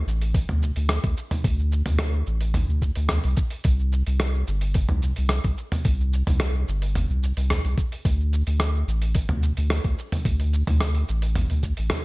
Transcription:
0.07 sub bass A1, cabasa
0.21 open hi-hat, cabasa
0.34 kick, open hi-hat, cabasa
0.49 sub bass D2, mid tom, cabasa
0.63 cabasa
0.76 sub bass D2, open hi-hat, cabasa
0.89 cross-stick, open hi-hat, cabasa
1.04 sub bass D2, kick, open hi-hat, cabasa
1.17 cabasa
1.31 mid tom, open hi-hat, cabasa
1.44 sub bass D2, kick, open hi-hat, cabasa
1.59 cabasa
1.72 cabasa
1.86 sub bass D2, mid tom, open hi-hat, cabasa
1.99 cross-stick, open hi-hat, cabasa
2.14 cabasa
2.27 sub bass A1, cabasa
2.41 open hi-hat, cabasa
2.54 mid tom, open hi-hat, cabasa
2.69 sub bass D2, cabasa
2.82 kick, cabasa
2.96 sub bass D2, open hi-hat, cabasa
3.09 cross-stick, mid tom, open hi-hat, cabasa
3.24 sub bass C2, open hi-hat, cabasa
3.37 kick, cabasa
3.50 open hi-hat, cabasa
3.64 sub bass C2, kick, open hi-hat, cabasa
3.79 cabasa
3.92 cabasa
4.06 sub bass C2, open hi-hat, cabasa
4.20 cross-stick, open hi-hat, cabasa
4.34 cabasa
4.47 sub bass G1, cabasa
4.61 open hi-hat, cabasa
4.74 kick, open hi-hat, cabasa
4.89 sub bass C2, mid tom, cabasa
5.02 cabasa
5.16 sub bass C2, open hi-hat, cabasa
5.29 cross-stick, open hi-hat, cabasa
5.44 sub bass C2, kick, open hi-hat, cabasa
5.58 cabasa
5.72 mid tom, open hi-hat, cabasa
5.85 sub bass C2, kick, open hi-hat, cabasa
6.01 cabasa
6.13 cabasa
6.27 sub bass C2, mid tom, open hi-hat, cabasa
6.40 cross-stick, open hi-hat, cabasa
6.55 cabasa
6.68 sub bass G1, cabasa
6.82 open hi-hat, cabasa
6.95 mid tom, open hi-hat, cabasa
7.10 sub bass C2, cabasa
7.23 cabasa
7.37 sub bass C2, open hi-hat, cabasa
7.50 cross-stick, mid tom, open hi-hat, cabasa
7.65 sub bass C2, open hi-hat, cabasa
7.78 kick, cabasa
7.92 open hi-hat, cabasa
8.05 sub bass D2, kick, open hi-hat, cabasa
8.20 cabasa
8.33 cabasa
8.47 sub bass D2, open hi-hat, cabasa
8.60 cross-stick, open hi-hat, cabasa
8.75 cabasa
8.88 sub bass A1, cabasa
9.02 open hi-hat, cabasa
9.15 kick, open hi-hat, cabasa
9.29 sub bass D2, mid tom, cabasa
9.43 cabasa
9.57 sub bass D2, open hi-hat, cabasa
9.70 cross-stick, open hi-hat, cabasa
9.84 sub bass D2, kick, open hi-hat, cabasa
9.98 cabasa
10.12 mid tom, open hi-hat, cabasa
10.25 sub bass D2, kick, open hi-hat, cabasa
10.40 open hi-hat, cabasa
10.53 cabasa
10.67 sub bass D2, mid tom, open hi-hat, cabasa
10.80 cross-stick, open hi-hat, cabasa
10.95 open hi-hat, cabasa
11.08 sub bass A1, cabasa
11.22 open hi-hat, cabasa
11.35 mid tom, open hi-hat, cabasa
11.50 sub bass D2, open hi-hat, cabasa
11.63 kick, cabasa
11.77 sub bass A1, open hi-hat, cabasa
11.90 cross-stick, mid tom, open hi-hat, cabasa

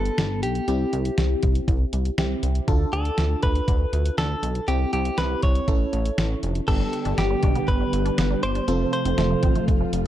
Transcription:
Already playing: analog synth bass G1, fm electric piano B3 D4 G4, clean electric guitar A4
0.05 closed hi-hat
0.18 analog synth bass G1, snare, closed hi-hat
0.43 analog synth bass B1, clean electric guitar G4, closed hi-hat
0.55 closed hi-hat
0.68 analog synth bass C2, fm electric piano C4 E4 G4, closed hi-hat
0.93 analog synth bass C2, closed hi-hat
1.05 closed hi-hat
1.18 analog synth bass C2, snare, closed hi-hat
1.43 analog synth bass C2, kick, closed hi-hat
1.55 closed hi-hat
1.68 analog synth bass C2, kick, closed hi-hat
1.93 analog synth bass C2, closed hi-hat
2.05 closed hi-hat
2.18 analog synth bass C2, fm electric piano C4 E4 G4, snare, closed hi-hat
2.43 analog synth bass C2, closed hi-hat
2.55 closed hi-hat
2.68 analog synth bass D2, fm electric piano D4 F4 A4, kick, closed hi-hat
2.93 analog synth bass D2, clean electric guitar A4, closed hi-hat
3.05 closed hi-hat
3.18 analog synth bass D2, snare, closed hi-hat
3.43 analog synth bass D2, clean electric guitar B4, kick, closed hi-hat
3.55 closed hi-hat
3.68 analog synth bass D2, kick, closed hi-hat
3.93 analog synth bass D2, closed hi-hat
4.06 closed hi-hat
4.18 analog synth bass D2, clean electric guitar A4, snare, closed hi-hat
4.43 analog synth bass B1, closed hi-hat
4.55 closed hi-hat
4.68 analog synth bass C2, fm electric piano C4 E4 G4, clean electric guitar G4, closed hi-hat
4.93 analog synth bass C2, clean electric guitar G4, closed hi-hat
5.05 closed hi-hat
5.18 analog synth bass C2, clean electric guitar B4, snare, closed hi-hat
5.42 analog synth bass C2, clean electric guitar C#5, kick, closed hi-hat
5.55 closed hi-hat
5.68 analog synth bass A1, fm electric piano C#4 E4 A4, kick, closed hi-hat
5.93 analog synth bass A1, closed hi-hat
6.06 closed hi-hat
6.18 analog synth bass A1, snare, closed hi-hat
6.43 analog synth bass F1, closed hi-hat
6.55 closed hi-hat
6.68 analog synth bass G1, string machine D3 G3 B3 G4, synth arpeggio sound G3, fm electric piano B3 D4 G4, clean electric guitar A4, kick, closed hi-hat, crash
6.80 synth arpeggio sound G3
6.93 closed hi-hat
7.05 analog synth bass G1, synth arpeggio sound D4, closed hi-hat
7.18 analog synth bass G1, synth arpeggio sound B3, clean electric guitar G4, snare, closed hi-hat
7.30 synth arpeggio sound G3
7.43 analog synth bass B1, synth arpeggio sound D4, kick, closed hi-hat
7.55 synth arpeggio sound B3, closed hi-hat
7.68 analog synth bass G1, clean electric guitar B4, kick, closed hi-hat
7.80 synth arpeggio sound G3
7.93 analog synth bass G1, closed hi-hat
8.05 synth arpeggio sound D4, closed hi-hat
8.18 analog synth bass G1, synth arpeggio sound B3, snare, closed hi-hat
8.30 synth arpeggio sound G3
8.43 analog synth bass G1, clean electric guitar C5, synth arpeggio sound D6, closed hi-hat
8.55 synth arpeggio sound D4, closed hi-hat
8.68 analog synth bass F1, string machine C3 F3 A3 F4, synth arpeggio sound F3, fm electric piano C4 F4 A4, closed hi-hat
8.81 synth arpeggio sound F3
8.93 clean electric guitar C5, closed hi-hat
9.05 analog synth bass F1, synth arpeggio sound C4, closed hi-hat
9.18 analog synth bass F1, synth arpeggio sound A3, snare, closed hi-hat
9.31 synth arpeggio sound F3
9.43 analog synth bass A1, synth arpeggio sound C4, kick, closed hi-hat
9.55 synth arpeggio sound A3, closed hi-hat
9.68 analog synth bass F1, kick, closed hi-hat
9.81 synth arpeggio sound F3
9.93 analog synth bass F1, closed hi-hat

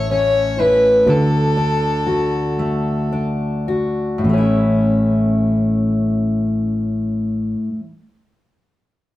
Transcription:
Already playing: fingered electric bass A1, steel-string acoustic guitar A2 A3 C#4 E4, violin C#5
0.11 steel-string acoustic guitar C#4, violin C#5
0.59 steel-string acoustic guitar E4, violin B4
1.06 fingered electric bass D2, steel-string acoustic guitar D3, violin A4
1.57 steel-string acoustic guitar D4
2.07 steel-string acoustic guitar F#4
2.59 steel-string acoustic guitar A3
3.12 steel-string acoustic guitar D4
3.68 steel-string acoustic guitar F#4
4.18 steel-string acoustic guitar A2
4.24 fingered electric bass A1, steel-string acoustic guitar E3
4.29 steel-string acoustic guitar A3
4.33 steel-string acoustic guitar C#4
4.38 steel-string acoustic guitar E4

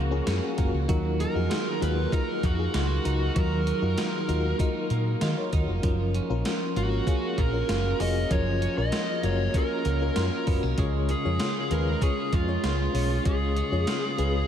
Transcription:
Already playing: fingered electric bass C#2, clean electric guitar F3 A#3 C#4, fm electric piano C#4 F4 F#4 G#4 A#4 F5 F#5
0.11 fm electric piano C#4 F4 G#4 A#4
0.27 fingered electric bass F#2, clean electric guitar C#4, snare, closed hi-hat
0.57 fingered electric bass F#1, clean electric guitar A#3, fm electric piano C#4 F4 F#4 A#4, kick, closed hi-hat
0.74 fingered electric bass C#2
0.88 fingered electric bass D#2, fm electric piano D#3 D#4 F4 F#4 A#4, clean electric guitar F#3, kick, closed hi-hat
1.19 clean electric guitar D#4, lead electric guitar A#4, closed hi-hat
1.35 fingered electric bass F2, fm electric piano D#4 F4 F#4 G#4
1.50 clean electric guitar F4, snare, closed hi-hat
1.81 fingered electric bass D#2, clean electric guitar A#3, fm electric piano D#4 F4 F#4 G#4, lead electric guitar B4, closed hi-hat
2.12 fm electric piano F#3 D#4 F4 A#4, clean electric guitar D#4, lead electric guitar A#4, kick, closed hi-hat
2.43 fingered electric bass F2, clean electric guitar A#3, lead electric guitar F#4, kick, closed hi-hat
2.58 fm electric piano D#4 F4 F#4 G#4
2.74 fingered electric bass C#2, clean electric guitar F4, lead electric guitar F#4, snare, closed hi-hat
3.05 fingered electric bass C#2, fm electric piano D#4 F4 F#4 A#4, clean electric guitar D#4, closed hi-hat
3.36 fingered electric bass D#2, fm electric piano D#3 F#3 D#4 F4 A#4, clean electric guitar F#3, lead electric guitar A#4, kick, closed hi-hat
3.67 clean electric guitar D#4, closed hi-hat
3.82 fingered electric bass F#2, fm electric piano D#4 F4 F#4 A#4
3.98 clean electric guitar F4, snare, closed hi-hat
4.28 fingered electric bass D#2, clean electric guitar A#3, fm electric piano D#4 F4 F#4 A#4, closed hi-hat
4.59 fm electric piano F#3 D#4 F4 A#4, clean electric guitar D#4, kick, closed hi-hat
4.90 fingered electric bass A#2, clean electric guitar A#3, closed hi-hat
5.21 fingered electric bass D#3, clean electric guitar F4, fm electric piano D#5, snare, closed hi-hat
5.37 fm electric piano A#4 C#5
5.53 fingered electric bass D#2, clean electric guitar D#4, fm electric piano F#4, kick, closed hi-hat
5.67 fingered electric bass F1, fm electric piano D#4 F#4
5.82 fingered electric bass F#1, clean electric guitar F3, fm electric piano C#4 F4 A#4, kick, closed hi-hat
6.14 clean electric guitar C#4, closed hi-hat
6.29 fingered electric bass A#1, fm electric piano C#4 F4 A#4
6.45 clean electric guitar F4, snare, closed hi-hat
6.76 fingered electric bass G#1, clean electric guitar A#3, fm electric piano C#4 F4 F#4 A#4, lead electric guitar F#4, closed hi-hat
7.07 fm electric piano C#4 G#4 A#4 F5, clean electric guitar C#4, kick, closed hi-hat
7.38 fingered electric bass A#1, clean electric guitar A#3, lead electric guitar A#4, kick, closed hi-hat
7.53 fm electric piano C#4 F4 A#4
7.69 fingered electric bass F#1, clean electric guitar F4, snare, closed hi-hat
7.99 fingered electric bass F1, fm electric piano C#4 F4 F#4 G#4, clean electric guitar C#4, lead electric guitar D#5, open hi-hat
8.30 fingered electric bass F#1, clean electric guitar F3, fm electric piano C#4 F4 A#4, lead electric guitar C#5, kick, closed hi-hat
8.62 clean electric guitar C#4, closed hi-hat
8.77 fingered electric bass A#1, fm electric piano C#4 F4 A#4, lead electric guitar D#5
8.92 clean electric guitar F4, snare, closed hi-hat
9.23 fingered electric bass F#1, clean electric guitar A#3, fm electric piano C#4 F4 F#4 A#4, lead electric guitar C#5, closed hi-hat
9.54 fm electric piano C#4 F4 A#4, clean electric guitar C#4, lead electric guitar A#4, kick, closed hi-hat
9.85 fingered electric bass C#2, clean electric guitar A#3, closed hi-hat
10.01 fm electric piano C#4 F4 A#4
10.16 fingered electric bass F#2, clean electric guitar F4, snare, closed hi-hat
10.47 fingered electric bass F#1, clean electric guitar B3, fm electric piano C#4 F4 F#4 A#4, kick, open hi-hat
10.63 fingered electric bass B1, clean electric guitar C#4
10.78 fingered electric bass C#2, fm electric piano C#3 C#4 F4 G#4 C#5, clean electric guitar G#3, kick, closed hi-hat
11.09 clean electric guitar C#4, lead electric guitar G#4, closed hi-hat
11.24 fingered electric bass F2, fm electric piano C#4 F4 G#4 C#5
11.40 clean electric guitar F4, snare, closed hi-hat
11.71 fingered electric bass D#2, clean electric guitar G#3, fm electric piano C#4 F4 G#4 B4, lead electric guitar A#4, closed hi-hat
12.01 fm electric piano C#4 F4 G#4 C#5, clean electric guitar C#4, lead electric guitar G#4, kick, closed hi-hat
12.33 fingered electric bass F2, clean electric guitar G#3, lead electric guitar F4, kick, closed hi-hat
12.47 fm electric piano C#4 F4 G#4 C#5
12.63 fingered electric bass C#2, clean electric guitar F4, lead electric guitar F4, snare, closed hi-hat
12.93 fingered electric bass B1, fm electric piano C#4 F4 G#4 C#5, clean electric guitar C#4, open hi-hat
13.25 fingered electric bass C#2, fm electric piano C#3 C#4 F4 G#4 C#5, clean electric guitar G#3, lead electric guitar G#4, kick, closed hi-hat
13.57 clean electric guitar C#4, closed hi-hat
13.71 fingered electric bass F2, fm electric piano C#4 F4 G#4 C#5
13.87 clean electric guitar F4, snare, closed hi-hat
14.18 fingered electric bass C#2, clean electric guitar G#3, fm electric piano C#4 F4 G#4 B4, closed hi-hat

